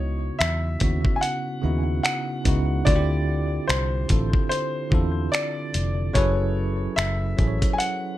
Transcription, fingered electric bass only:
Already playing: C#2
0.40 E2
0.82 D#2
1.64 D#2
2.46 C#2
2.87 D2
3.69 C2
4.10 A1
4.92 E2
5.75 F1
6.16 F#1
6.98 F#1
7.39 A1

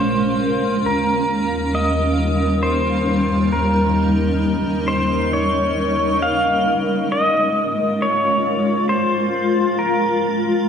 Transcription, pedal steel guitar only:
0.00 C5
0.86 A#4
1.75 D#5
2.63 C5
3.53 A#4
4.88 C5
5.33 C#5
6.22 F5
7.12 D#5
8.02 C#5
8.89 C5
9.79 A#4

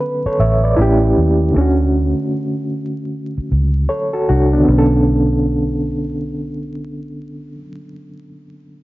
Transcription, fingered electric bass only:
0.26 muted fingered electric bass stroke
0.39 A1
0.78 A1
1.17 D#2
1.56 D2
3.38 muted fingered electric bass stroke
3.52 C#2
4.29 C2
4.68 B1

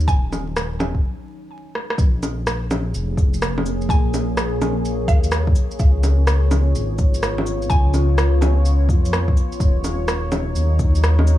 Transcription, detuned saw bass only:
0.08 D#1
1.98 A#1
2.94 F1
3.89 A#1
5.08 D#2
5.80 C#2
6.74 G#1
7.70 C#2
8.89 F2
9.60 D#1
10.55 D#2

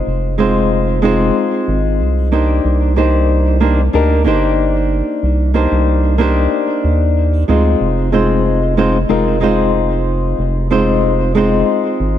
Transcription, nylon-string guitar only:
Already playing: G#3 C4 D#4 F4 C5
0.38 G#3 C4 D#4 F4 C5
1.02 G#3 C4 D#4 F4 C5
2.32 A#3 D4 D#4 G4 C5
2.96 A#3 D4 D#4 G4 C5
3.60 A#3 D4 D#4 G4 C5
3.93 A#3 D4 D#4 G4 A#4
4.24 A#3 D4 D#4 G4 C5
5.54 A#3 D4 D#4 G4 C5
6.18 A#3 D4 D#4 G4 C5
7.48 G#3 C4 D#4 F4 C5
8.12 G#3 C4 D#4 F4 C5
8.77 G#3 C4 D#4 F4 C5
9.09 G#3 C4 D#4 F4 A#4
9.40 G#3 C4 D#4 F4 C5
10.70 G#3 C4 D#4 F4 C5
11.35 G#3 C4 D#4 F4 C5

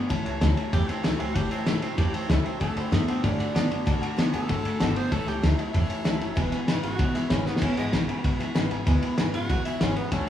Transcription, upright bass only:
0.10 A1
0.26 C#2
0.42 D2
0.57 muted upright bass stroke
0.73 E2
0.89 muted upright bass stroke
1.04 C#2
1.19 C#2
1.35 F#1
1.51 muted upright bass stroke
1.66 C#2
1.82 C#2
1.98 E2
2.13 muted upright bass stroke
2.29 C#2
2.61 D2
2.76 F#2
2.92 F#2
3.07 muted upright bass stroke
3.24 A2
3.39 muted upright bass stroke
3.55 F#2
3.70 F#2
3.87 B1
4.02 muted upright bass stroke
4.18 F#2
4.33 F#2
4.49 A2
4.65 muted upright bass stroke
4.80 G#1
5.12 A1
5.27 C#2
5.43 D2
5.74 E2
6.05 C#2
6.21 F#1
6.37 E1
6.52 muted upright bass stroke
6.67 G#1
6.83 G#1
6.99 B1
7.31 G#1
7.46 muted upright bass stroke
7.62 E1
7.77 G#1
7.93 A1
8.08 muted upright bass stroke
8.24 B1
8.39 muted upright bass stroke
8.55 G#1
8.71 G#1
8.87 D2
9.18 G#1
9.33 G#1
9.49 B1
9.65 muted upright bass stroke
9.81 G#1
9.96 muted upright bass stroke
10.12 D2

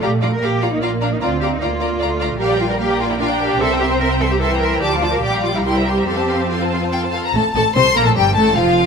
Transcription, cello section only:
0.02 G4
0.22 F4
0.33 A#4
0.42 G4
0.62 F4
0.72 D#4
0.82 F4
1.02 D4
1.12 D#4
1.22 F4
1.42 G4
1.53 D#4
1.62 F4
2.40 G4
2.60 F4
2.71 A#4
2.81 G4
3.00 F4
3.11 E4
3.21 F4
3.41 G4
3.61 A4
3.80 G4
3.91 C5
4.01 A#4
4.21 A4
4.31 G4
4.40 A4
4.60 A#4
4.81 G4
5.01 F4
5.12 A#4
5.22 G4
5.44 F4
5.54 E4
5.64 E4
5.85 G4
6.06 G4
6.49 F4
7.35 A2
7.56 A2
7.76 C3
7.96 A#2
8.06 A2
8.16 G2
8.37 A2
8.57 F2

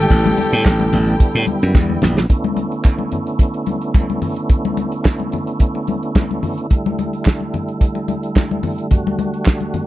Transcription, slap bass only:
0.11 A1
0.53 A2
0.66 A1
0.93 A1
1.35 A2
1.63 F#2
1.75 E2
2.03 A#1

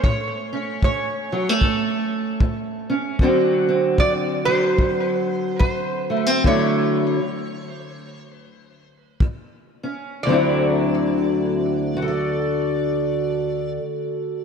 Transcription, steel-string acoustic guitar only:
Already playing: A3
0.06 A2
0.53 C#4
0.85 A2
1.32 F#3
1.49 A3
1.63 A2
2.41 A2
2.90 C#4
3.21 D2 D3 F#3 C4 F#4
3.69 C4
3.99 D2
4.47 F#3
4.80 D2
5.61 D2
6.10 A3
6.26 C4
6.44 D2 D3 F#3 A3 E4
9.22 D#2
9.83 C#4
10.25 D2 D3 F#3
10.30 C4 E4
11.97 F#4
12.02 A4
12.08 D5

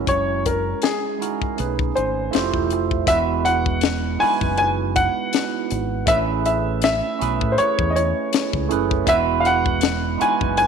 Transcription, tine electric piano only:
Already playing: G#3 C#4 E4 F#4 A#4
1.18 G#3 D#4 E4 F#4 A#4
1.57 A3 C#4 D4 G#4 B4
1.65 D#4
1.96 G#5
2.31 A3 E4 F4 G4 C5 E5
3.06 G#3 B3 E4 F#4 B4
4.19 G#3 D#4 E4 F#4
4.23 B4
6.06 A3 C#4 E4 G#4 B4
7.19 A3 C#4 E4 G#4 B4
8.69 A3 C#4 E4 G#4 B4
9.06 G#3 B3 E4 F#4 B4
10.18 G#3 D#4 E4 F#4 B4

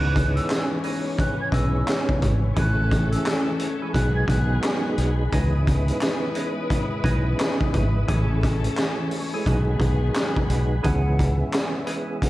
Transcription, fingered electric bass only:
Already playing: C#2
1.52 B1
2.22 G#1
2.57 A1
3.94 B1
4.28 B1
4.98 B1
5.32 C#2
7.04 B1
7.74 G#1
8.09 A1
9.46 B1
9.80 B1
10.50 B1
10.84 C#2

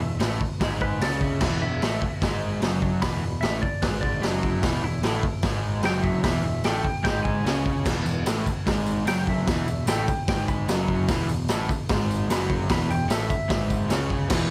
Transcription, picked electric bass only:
0.01 E1
0.20 A1
0.60 G#1
1.00 C#2
1.41 E1
1.61 E1
1.82 A1
2.22 G#1
2.61 F#1
3.03 E1
3.23 E1
3.43 A1
3.82 G#1
4.22 F#1
4.63 E1
4.82 E1
5.02 A1
5.43 G#1
5.83 F#1
6.23 E1
6.43 E1
6.64 A1
7.04 G#1
7.44 C#2
7.85 E1
8.06 E1
8.26 A1
8.67 G#1
9.06 F#1
9.47 E1
9.66 E1
9.86 A1
10.28 G#1
10.68 F#1
11.08 E1
11.28 E1
11.49 A1
11.90 G#1
12.29 F#1
12.70 E1
12.89 E1
13.09 A1
13.49 G#1
13.90 C#2
14.30 E1

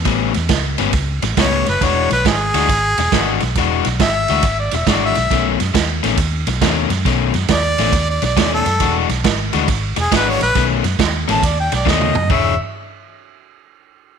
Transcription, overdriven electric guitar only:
0.05 A2 G3 B3 C#4
0.35 muted overdriven electric guitar stroke
0.49 muted overdriven electric guitar stroke
0.78 A2 G3 B3 C#4
0.94 muted overdriven electric guitar stroke
1.23 muted overdriven electric guitar stroke
1.38 A2 G3 B3 C#4
1.67 muted overdriven electric guitar stroke
1.82 E3 G#3 D4 F#4
2.11 muted overdriven electric guitar stroke
2.26 muted overdriven electric guitar stroke
2.55 E3 G#3 D4 F#4
2.69 muted overdriven electric guitar stroke
2.99 muted overdriven electric guitar stroke
3.13 E3 G#3 D4 F#4
3.43 muted overdriven electric guitar stroke
3.58 E3 G#3 D4 F#4
3.88 muted overdriven electric guitar stroke
4.01 muted overdriven electric guitar stroke
4.30 E3 G#3 D4 F#4
4.45 muted overdriven electric guitar stroke
4.75 muted overdriven electric guitar stroke
4.88 E3 G#3 D4 F#4
5.17 muted overdriven electric guitar stroke
5.32 B2 D#3 A3 C#4
5.60 muted overdriven electric guitar stroke
5.74 muted overdriven electric guitar stroke
6.03 B2 D#3 A3 C#4
6.18 muted overdriven electric guitar stroke
6.48 muted overdriven electric guitar stroke
6.62 B2 D#3 A3 C#4
6.91 muted overdriven electric guitar stroke
7.05 B2 D#3 A3 C#4
7.35 muted overdriven electric guitar stroke
7.50 muted overdriven electric guitar stroke
7.79 B2 D#3 A3 C#4
7.94 muted overdriven electric guitar stroke
8.23 muted overdriven electric guitar stroke
8.37 B2 D#3 A3 C#4
8.67 muted overdriven electric guitar stroke
8.81 E3 G#3 D4 F#4
9.10 muted overdriven electric guitar stroke
9.25 muted overdriven electric guitar stroke
9.53 E3 G#3 D4 F#4
9.69 muted overdriven electric guitar stroke
9.97 muted overdriven electric guitar stroke
10.12 E3 G#3 D4 F#4
10.42 muted overdriven electric guitar stroke
10.56 B2 D#3 A3 C#4
10.85 muted overdriven electric guitar stroke
10.99 muted overdriven electric guitar stroke
11.28 B2 D#3 A3 C#4
11.44 muted overdriven electric guitar stroke
11.72 muted overdriven electric guitar stroke
11.86 B2 D#3 A3 C#4
12.16 muted overdriven electric guitar stroke
12.30 E3 D4 G#4 C#5

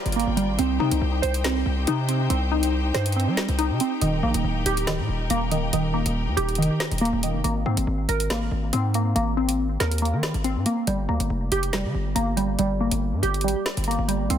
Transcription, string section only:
Already playing: F4 A#4 D5 G5
0.59 D#4 G4 C5
4.01 A#4

